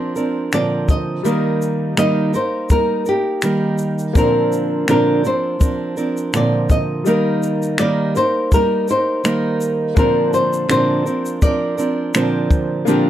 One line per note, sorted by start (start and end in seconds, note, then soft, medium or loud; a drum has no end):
0.00 0.16 F3 soft
0.00 1.20 A#3 medium
0.00 0.16 C4 medium
0.00 1.24 C4 soft
0.00 0.16 D4 medium
0.00 0.15 A#4 medium
0.00 0.54 C5 medium
0.00 1.22 C5 medium
0.16 0.52 F3 soft
0.16 0.53 C4 soft
0.16 0.53 D4 soft
0.16 0.52 A#4 soft
0.16 shaker soft
0.52 1.25 A#2 medium
0.52 1.24 D3 medium
0.52 1.24 F3 medium
0.52 1.24 C4 medium
0.52 1.25 A#4 medium
0.52 0.90 D5 loud
0.52 finger snap medium
0.52 shaker medium
0.89 1.58 D#5 medium
0.89 kick medium
0.89 shaker soft
1.23 1.96 D#3 medium
1.23 4.10 G3 medium
1.23 1.96 G3 medium
1.23 1.97 A#3 medium
1.23 4.11 D#4 medium
1.23 1.97 D#4 medium
1.23 1.98 A#4 medium
1.23 4.12 A#4 medium
1.23 shaker medium
1.62 shaker medium
1.97 2.34 D#3 medium
1.97 2.34 G3 medium
1.97 2.34 A#3 medium
1.97 2.34 D#4 medium
1.97 2.33 A#4 medium
1.97 2.35 D#5 medium
1.97 finger snap loud
1.97 shaker medium
2.34 2.69 A#3 soft
2.34 2.71 D#4 soft
2.34 2.70 A#4 medium
2.34 2.71 C5 medium
2.34 shaker soft
2.70 3.06 G3 medium
2.70 3.07 A#3 medium
2.70 3.06 D#4 soft
2.70 3.08 A#4 medium
2.70 3.05 A#4 medium
2.70 kick medium
2.70 shaker medium
3.06 3.43 A#3 soft
3.06 3.43 D#4 soft
3.06 4.20 G4 medium
3.06 3.43 A#4 soft
3.06 shaker soft
3.42 4.15 D#3 medium
3.42 4.16 G3 medium
3.42 4.16 A#3 medium
3.42 4.16 D#4 medium
3.42 4.16 A#4 medium
3.42 finger snap medium
3.42 shaker medium
3.78 shaker soft
3.99 shaker soft
4.13 4.87 A#2 medium
4.13 4.87 D3 medium
4.13 4.87 F3 medium
4.13 7.01 A#3 medium
4.13 7.02 C4 medium
4.13 4.87 C4 medium
4.13 4.88 D4 medium
4.13 4.89 A#4 medium
4.13 kick loud
4.13 shaker medium
4.17 4.90 A#4 medium
4.17 7.03 C5 medium
4.52 shaker soft
4.88 5.24 A#2 medium
4.88 5.25 D3 medium
4.88 5.25 F3 medium
4.88 5.24 C4 medium
4.88 5.23 D4 medium
4.88 5.22 A#4 medium
4.88 5.23 A#4 medium
4.88 finger snap medium
4.88 shaker medium
5.23 5.58 F3 soft
5.23 5.59 C4 soft
5.23 5.59 D4 soft
5.23 5.60 A#4 medium
5.23 6.36 C5 medium
5.23 shaker soft
5.59 5.96 F3 soft
5.59 5.97 C4 medium
5.59 5.96 D4 medium
5.59 5.96 A#4 medium
5.59 kick medium
5.59 shaker medium
5.97 6.33 F3 soft
5.97 6.33 C4 soft
5.97 6.34 D4 soft
5.97 6.33 A#4 soft
5.97 shaker soft
6.17 shaker soft
6.33 7.06 A#2 medium
6.33 7.05 D3 medium
6.33 7.06 F3 medium
6.33 7.07 C4 medium
6.33 7.07 A#4 medium
6.33 6.71 D5 medium
6.33 finger snap loud
6.33 shaker medium
6.70 7.39 D#5 medium
6.70 kick medium
6.70 shaker soft
7.04 7.79 D#3 medium
7.04 9.92 G3 medium
7.04 7.79 G3 medium
7.04 7.80 A#3 medium
7.04 9.93 D#4 medium
7.04 7.79 D#4 medium
7.04 7.81 A#4 medium
7.04 9.94 A#4 medium
7.04 shaker medium
7.43 shaker soft
7.63 shaker soft
7.78 8.15 D#3 medium
7.78 8.16 G3 medium
7.78 8.16 A#3 medium
7.78 8.16 D#4 medium
7.78 8.15 A#4 medium
7.78 8.16 D5 medium
7.78 finger snap loud
7.78 shaker medium
8.16 8.52 A#3 soft
8.16 8.52 D#4 soft
8.16 8.52 A#4 medium
8.16 8.53 C5 medium
8.16 shaker soft
8.52 8.88 G3 medium
8.52 8.89 A#3 medium
8.52 8.89 D#4 medium
8.52 8.90 A#4 medium
8.52 8.88 A#4 medium
8.52 kick medium
8.52 shaker medium
8.88 9.24 A#3 soft
8.88 9.24 D#4 soft
8.88 9.24 A#4 soft
8.88 9.99 C5 medium
8.88 shaker soft
9.24 9.96 D#3 medium
9.24 9.96 G3 medium
9.24 9.97 A#3 medium
9.24 9.97 D#4 medium
9.24 9.97 A#4 medium
9.24 finger snap loud
9.24 shaker medium
9.61 shaker medium
9.95 10.67 A#2 medium
9.95 10.67 D3 medium
9.95 10.67 F3 medium
9.95 12.82 A#3 medium
9.95 10.68 C4 medium
9.95 12.83 D4 medium
9.95 10.69 D4 medium
9.95 10.70 A#4 medium
9.95 12.84 C5 medium
9.95 kick loud
9.95 shaker medium
9.99 10.34 A#4 medium
10.33 10.70 C5 medium
10.33 shaker medium
10.53 shaker soft
10.68 11.05 A#2 medium
10.68 11.05 D3 medium
10.68 11.05 F3 medium
10.68 11.06 C4 medium
10.68 11.05 D4 medium
10.68 11.04 A#4 medium
10.68 11.42 C5 medium
10.68 finger snap loud
10.68 shaker medium
11.05 11.41 F3 soft
11.05 11.41 C4 soft
11.05 11.42 D4 soft
11.05 11.42 A#4 medium
11.05 shaker medium
11.26 shaker soft
11.42 11.78 F3 medium
11.42 11.78 C4 medium
11.42 11.77 D4 medium
11.42 11.76 A#4 medium
11.42 13.10 D5 medium
11.42 kick medium
11.42 shaker medium
11.77 12.14 F3 soft
11.77 12.14 C4 medium
11.77 12.14 D4 soft
11.77 12.14 A#4 medium
11.77 shaker medium
12.14 12.85 A#2 medium
12.14 12.86 D3 medium
12.14 12.87 F3 medium
12.14 12.87 C4 medium
12.14 12.87 D4 medium
12.14 12.88 A#4 medium
12.14 finger snap loud
12.14 shaker medium
12.51 kick medium
12.51 shaker soft
12.85 13.10 A#2 medium
12.85 13.10 D3 medium
12.85 13.10 F3 medium
12.85 13.10 A#3 medium
12.85 13.10 C4 medium
12.85 13.10 D4 medium
12.85 13.10 G4 medium
12.85 13.10 A#4 medium
12.85 shaker medium